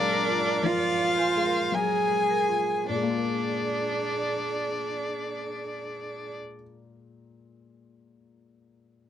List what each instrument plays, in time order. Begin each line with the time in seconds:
Already playing: felt piano A#2 F#3 G#3 F4, cello D4, viola A#4, violin D5
0.12 marimba A#4
0.29 felt piano F4
0.39 marimba D5
0.63 felt piano F3, cello F4, marimba A#4, viola D5, violin F5
1.01 felt piano F4
1.17 viola C5, marimba G#5
1.36 felt piano G#3
1.46 marimba A#4
1.72 felt piano F#3, cello G#4, viola A#4, violin G#5
2.10 felt piano G#3
2.30 marimba A#4
2.49 felt piano F4
2.60 marimba G#5
2.87 felt piano A#2, cello D4, viola G#4, violin D5
2.95 felt piano G#3
3.02 felt piano A#3
3.10 felt piano F4
3.17 felt piano A#4